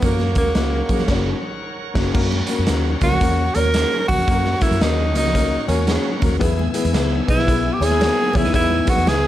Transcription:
0.02 fingered electric bass F#2, upright piano A#3 C#4 F#4 A#4, tenor saxophone A#3, tonewheel organ A#4 C#5 F#5 C#6, kick, closed hi-hat, low conga
0.20 snare, high conga
0.35 fingered electric bass D#2, upright piano A#3 C#4 F#4 A#4, tenor saxophone A#3, kick, closed hi-hat
0.46 high conga
0.55 fingered electric bass C#2, upright piano A#3 C#4 F#4 A#4, snare, closed hi-hat, muted conga
0.89 fingered electric bass F#3, upright piano A#3 C#4 F#4 G#4, kick, closed hi-hat, muted conga
0.99 snare, low conga
1.08 fingered electric bass F#1, upright piano A#3 C#4 F#4 C#5, kick, snare, crash
1.94 fingered electric bass F#1, upright piano A#3 C#4 F#4, kick, snare, crash
2.13 fingered electric bass F#2, upright piano A#3 C#4 F#4 A#4, tonewheel organ A#4 C#5 F#5 C#6, kick, crash, muted conga
2.32 high conga
2.47 upright piano A#3 C#4 F#4 A#4, closed hi-hat, muted conga
2.59 fingered electric bass F#2, high conga
2.67 fingered electric bass D#2, upright piano A#3 C#4 F#4 A#4, snare, closed hi-hat, muted conga
3.01 fingered electric bass C#2, upright piano A#3 C#4 F#4 A#4, tenor saxophone F#4, kick, closed hi-hat
3.12 low conga
3.20 fingered electric bass E2, upright piano A#3 C#4 F#4 A#4, kick, closed hi-hat, muted conga
3.55 fingered electric bass D#2, upright piano A#3 C#4 F#4 C#5, tenor saxophone A#4, closed hi-hat, muted conga
3.65 high conga
3.74 upright piano A#3 C#4 F#4 A#4, snare, closed hi-hat, muted conga
4.07 fingered electric bass C#2, upright piano A#3 C#4 F#4 A#4, tenor saxophone F#4, kick, closed hi-hat, low conga
4.18 fingered electric bass F2, closed hi-hat
4.27 fingered electric bass F#2, upright piano A#3 C#4 F#4 A#4, kick, closed hi-hat
4.45 snare, high conga
4.60 upright piano A#3 C#4 F#4 A#4, tenor saxophone E4, kick, closed hi-hat, muted conga
4.71 fingered electric bass F#2, closed hi-hat, high conga
4.80 fingered electric bass D#2, upright piano A#3 C#4 F#4 A#4, tenor saxophone D#4, snare, closed hi-hat, muted conga
5.13 fingered electric bass C#2, upright piano A#3 C#4 F#4 A#4, closed hi-hat, muted conga
5.17 tenor saxophone D#4
5.25 snare, low conga
5.33 upright piano A#3 C#4 F#4 A#4, kick, closed hi-hat
5.67 fingered electric bass E2, upright piano A#3 C#4 F#4 A#4, tenor saxophone C#4, closed hi-hat, muted conga
5.79 high conga
5.86 upright piano A#3 C#4 F#4 G#4, snare, closed hi-hat
6.19 fingered electric bass D#2, upright piano A#3 C#4 F#4 A#4, kick, closed hi-hat, muted conga, low conga
6.33 fingered electric bass D#2
6.39 fingered electric bass E2, upright piano E3 B3 E4 G#4 B4, tonewheel organ B3 G#5 E6, kick, closed hi-hat, muted conga
6.59 high conga
6.73 upright piano B3 E4 G#4 B4, closed hi-hat
6.85 fingered electric bass E2, closed hi-hat, high conga
6.92 fingered electric bass C#2, upright piano B3 E4 G#4 B4, snare, closed hi-hat, muted conga
7.26 fingered electric bass B1, upright piano B3 E4 G#4 B4, tenor saxophone E4, kick, closed hi-hat, muted conga
7.37 snare, low conga
7.46 upright piano B3 E4 G#4 B4, kick, closed hi-hat, muted conga
7.74 tenor saxophone G4
7.79 fingered electric bass D#2, upright piano B3 E4 G#4 C#5, closed hi-hat, muted conga
7.84 tenor saxophone G#4
7.91 clean electric guitar G#3 E4, high conga
7.99 clean electric guitar A#3 F#4, upright piano B3 E4 G#4 C#5, snare, closed hi-hat, muted conga
8.32 fingered electric bass C#2, upright piano B3 E4 G#4 C#5, clean electric guitar B3 G#4, kick, closed hi-hat, muted conga, low conga
8.37 tenor saxophone E4
8.43 fingered electric bass D#2, clean electric guitar D#4 B4, snare, closed hi-hat
8.52 fingered electric bass E2, upright piano E3 B3 E4 G#4 B4, tenor saxophone E4, kick, closed hi-hat
8.70 high conga
8.85 upright piano B3 E4 G#4 B4, kick, closed hi-hat, muted conga
8.89 tenor saxophone F#4
8.97 fingered electric bass E2, closed hi-hat, high conga
9.06 fingered electric bass C#2, upright piano B3 E4 G#4 B4, tenor saxophone G#4, snare, closed hi-hat, muted conga

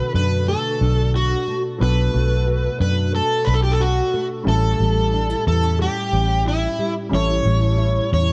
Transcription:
Already playing: nylon-string guitar B2 D3 A3 F#4, upright piano F#3 B3 D4 A4, electric slide guitar B4
0.14 fingered electric bass F#2, nylon-string guitar D4, electric slide guitar B4
0.47 nylon-string guitar A3, electric slide guitar A4
0.81 fingered electric bass B1, nylon-string guitar D4
1.14 nylon-string guitar F#4, electric slide guitar F#4
1.47 nylon-string guitar A3
1.78 fingered electric bass B1, nylon-string guitar B2, upright piano F#3 B3 D4
1.83 upright piano A4, electric slide guitar B4
2.14 fingered electric bass B1, nylon-string guitar A3
2.47 nylon-string guitar F#4
2.80 fingered electric bass F#2, nylon-string guitar D4, electric slide guitar B4
3.13 nylon-string guitar A3, electric slide guitar A4
3.45 fingered electric bass B1, nylon-string guitar D4, electric slide guitar B4
3.54 electric slide guitar A4
3.63 electric slide guitar G4
3.72 electric slide guitar A4
3.80 nylon-string guitar F#4, electric slide guitar F#4
4.14 nylon-string guitar A3
4.44 fingered electric bass A1, nylon-string guitar A2, upright piano G3 C#4 E4
4.48 electric slide guitar A4, upright piano A4
4.80 fingered electric bass A1, nylon-string guitar G3
5.14 nylon-string guitar D4
5.30 nylon-string guitar E4
5.46 fingered electric bass E2, nylon-string guitar B3, electric slide guitar A4
5.63 nylon-string guitar C#4
5.79 nylon-string guitar G3, electric slide guitar G4
6.12 fingered electric bass A1, nylon-string guitar C#4
6.45 nylon-string guitar E4, electric slide guitar E4
6.79 nylon-string guitar G3
7.09 fingered electric bass A1, nylon-string guitar A2, upright piano G3 C#4 E4
7.14 upright piano A4, electric slide guitar C#5
7.45 fingered electric bass A1, nylon-string guitar G3
7.78 nylon-string guitar E4
8.11 fingered electric bass E2, nylon-string guitar C#4, electric slide guitar C#5

